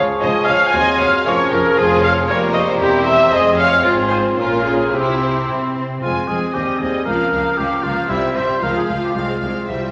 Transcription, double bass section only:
0.22 0.30 C#2 medium
0.47 0.55 C#2 medium
0.73 0.81 D#2 medium
0.98 1.06 D#2 medium
1.25 1.33 F1 medium
1.52 1.60 F1 medium
1.76 2.25 F1 medium
2.29 2.79 F1 medium
2.80 3.31 E1 medium
3.32 3.82 F1 medium
3.84 4.36 G#1 medium
4.37 4.91 A#1 soft
4.92 5.47 C2 medium
5.49 6.03 C3 medium
6.02 6.10 F1 soft
6.29 6.37 F1 soft
6.55 6.63 D#2 soft
6.80 6.88 D#2 soft
7.06 7.14 C#2 medium
7.33 7.41 C#2 medium
7.59 7.67 C#2 medium
7.84 7.92 C#2 medium
8.10 8.18 C2 medium
8.36 8.44 C2 medium
8.62 8.70 C#2 soft
8.89 8.97 C#2 soft
9.16 9.24 C2 soft
9.42 9.50 C2 soft
9.68 9.76 C2 soft

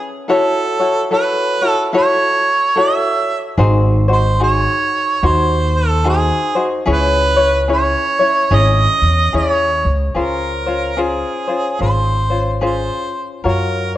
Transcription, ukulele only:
0.00 0.29 C#4 medium
0.00 0.29 E4 medium
0.00 0.27 G#4 medium
0.00 0.28 B4 medium
0.28 0.80 E4 medium
0.28 0.79 F#4 medium
0.28 0.79 A4 medium
0.28 0.78 C#5 medium
0.79 1.10 E4 soft
0.79 1.11 F#4 medium
0.79 1.10 C#5 soft
1.11 1.62 E4 medium
1.11 1.61 F#4 medium
1.11 1.62 A4 medium
1.11 1.60 C#5 medium
1.61 1.92 E4 soft
1.61 1.93 F#4 soft
1.61 1.92 C#5 medium
1.93 2.75 E4 medium
1.93 2.77 F#4 medium
1.93 2.74 A4 medium
1.93 2.76 C#5 medium
2.76 3.58 E4 medium
2.76 3.58 F#4 medium
2.76 3.58 A4 medium
2.76 3.57 C#5 medium
3.58 4.09 D#4 medium
3.58 4.08 F#4 medium
3.58 4.09 G#4 medium
3.58 4.07 C5 loud
4.08 4.39 D#4 soft
4.08 4.40 F#4 medium
4.08 4.39 C5 medium
4.40 5.22 D#4 medium
4.40 5.22 F#4 medium
4.40 5.26 G#4 medium
5.23 6.04 D#4 medium
5.23 6.04 F#4 medium
5.23 6.05 C5 medium
6.04 6.56 D#4 medium
6.04 6.55 F#4 medium
6.04 6.56 G#4 medium
6.04 6.54 C5 medium
6.55 6.86 D#4 soft
6.55 6.86 F#4 medium
6.55 6.86 C5 soft
6.85 7.38 C#4 medium
6.85 7.37 E4 medium
6.85 7.37 G#4 medium
6.85 7.35 C#5 medium
7.37 7.67 C#4 soft
7.37 7.68 E4 soft
7.37 7.68 C#5 medium
7.68 8.20 C#4 medium
7.68 8.19 E4 medium
7.68 8.20 G#4 medium
7.68 8.18 C#5 medium
8.19 8.50 C#4 soft
8.19 8.50 E4 soft
8.19 8.51 C#5 medium
8.51 9.33 C#4 medium
8.51 9.33 E4 medium
8.51 9.32 G#4 medium
8.51 9.34 C#5 medium
9.32 10.15 C#4 medium
9.32 10.15 E4 medium
9.32 10.14 G#4 medium
9.32 10.15 C#5 medium
10.14 10.67 C#4 medium
10.14 10.66 F4 medium
10.14 10.66 G#4 medium
10.14 10.65 C5 medium
10.66 10.96 C#4 soft
10.66 10.97 F4 soft
10.66 10.97 C5 soft
10.97 11.48 C#4 medium
10.97 11.48 F4 medium
10.97 11.49 G#4 medium
10.97 11.46 C5 medium
11.47 11.79 C#4 soft
11.47 11.79 F4 soft
11.47 11.79 C5 soft
11.79 12.31 C#4 medium
11.79 12.30 F4 medium
11.79 12.31 G#4 medium
11.79 12.29 C5 medium
12.30 12.60 C#4 soft
12.30 12.61 F4 soft
12.30 12.61 C5 soft
12.61 13.44 C#4 medium
12.61 13.44 F4 medium
12.61 13.43 G#4 medium
12.61 13.45 C5 medium
13.44 13.96 F4 medium
13.44 13.95 F#4 medium
13.44 13.96 A#4 medium
13.44 13.94 C#5 medium

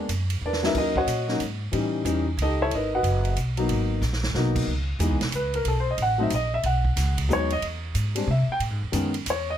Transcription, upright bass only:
0.09 0.41 F#2 medium
0.41 0.74 E2 medium
0.75 1.06 D#2 medium
1.07 1.39 A#2 medium
1.40 1.72 G#2 medium
1.72 2.04 A2 medium
2.05 2.37 E2 medium
2.37 2.70 C#2 medium
2.70 3.02 G#1 medium
3.03 3.35 F#1 medium
3.36 3.68 B1 medium
3.69 4.01 G#1 medium
4.02 4.33 A#1 medium
4.34 4.66 B1 medium
4.67 4.99 C#2 medium
4.99 5.10 E2 medium
5.10 5.20 C#2 soft
5.21 5.31 B1 medium
5.32 5.64 C#2 medium
5.64 5.97 B1 medium
5.98 6.30 A1 medium
6.31 6.63 A#1 medium
6.64 6.96 B1 medium
6.96 7.28 C#2 medium
7.29 7.61 D#2 medium
7.62 7.94 E2 medium
7.94 8.27 G#2 medium
8.27 8.47 C3 medium
8.48 muted upright bass stroke soft
8.59 8.70 A2 medium
8.70 8.81 G#2 soft
8.82 8.92 E2 medium
8.93 9.25 F#2 medium
9.26 9.58 E2 medium

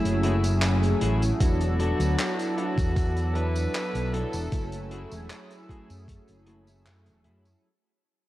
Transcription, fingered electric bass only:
0.05 0.92 F#1 medium
1.02 1.28 A1 loud
1.41 1.89 E1 loud
2.00 2.12 D2 loud
2.78 3.65 E2 loud
3.95 4.20 B1 medium
4.34 4.46 E1 medium
4.52 5.01 F#1 medium
5.12 5.24 E1 loud
5.90 6.15 F#2 loud
6.29 6.85 F#1 medium
6.86 7.08 F#2 loud
7.06 7.26 E1 medium
7.25 7.52 F#2 medium

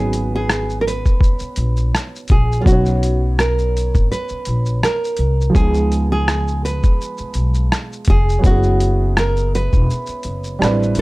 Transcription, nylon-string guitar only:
0.00 0.34 G#4 medium
0.36 0.81 G#4 medium
0.81 0.86 A#4 medium
0.87 1.90 B4 medium
2.31 2.61 G#4 medium
2.61 2.66 F4 medium
2.67 3.41 F#4 medium
3.40 4.07 A#4 medium
4.12 4.84 B4 loud
4.84 5.55 A#4 medium
5.56 6.07 G#4 medium
6.12 6.64 G#4 medium
6.65 7.68 B4 medium
8.10 8.42 G#4 loud
8.46 9.13 F#4 medium
9.19 9.51 A#4 loud
9.55 10.99 B4 loud

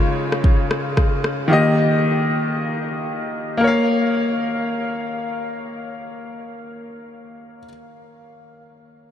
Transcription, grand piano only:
0.00 1.45 C#3 medium
0.00 1.46 G#3 medium
0.00 1.50 F4 medium
0.00 1.48 C#5 medium
1.48 3.57 D#3 medium
1.48 3.56 A#3 medium
1.48 3.59 G4 medium
1.53 3.60 D#5 medium
3.57 7.59 A#3 medium
3.57 7.63 A#4 medium
3.64 7.66 C#5 medium
3.64 7.69 F5 medium

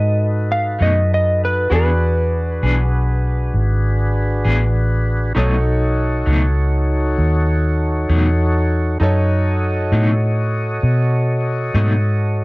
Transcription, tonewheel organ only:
0.00 1.68 D#4 medium
0.00 1.68 F#4 medium
0.00 1.68 A4 medium
0.00 1.68 B4 medium
1.71 5.33 D4 medium
1.71 5.33 F#4 medium
1.71 5.33 G#4 medium
1.71 5.33 B4 medium
5.37 8.98 D#4 medium
5.37 8.98 F#4 medium
5.37 8.98 A4 medium
5.37 8.98 C#5 medium
9.00 12.44 F#4 medium
9.00 12.44 A4 medium
9.00 12.44 C#5 medium
9.00 12.44 D#5 medium

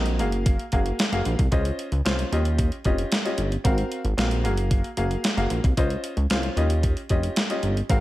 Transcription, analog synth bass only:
0.00 0.21 A#1 loud
0.20 0.57 F#1 medium
0.73 0.92 F#1 loud
1.12 1.22 F#1 medium
1.26 1.35 A#1 medium
1.39 1.48 C2 medium
1.52 1.71 C#2 medium
1.92 2.01 C#2 medium
2.05 2.24 C2 medium
2.32 2.70 D#2 loud
2.85 3.04 F1 medium
3.38 3.57 G1 medium
3.65 3.84 G#1 medium
4.04 4.14 G#1 loud
4.18 4.46 A#1 loud
4.44 4.82 F#1 loud
4.97 5.16 F#1 medium
5.37 5.47 F#1 medium
5.51 5.60 A#1 medium
5.64 5.73 C2 medium
5.77 5.96 C#2 loud
6.17 6.26 C#2 medium
6.30 6.49 C2 loud
6.57 6.94 D#2 medium
7.10 7.29 F1 medium
7.63 7.82 G1 medium
7.89 8.00 G#1 medium

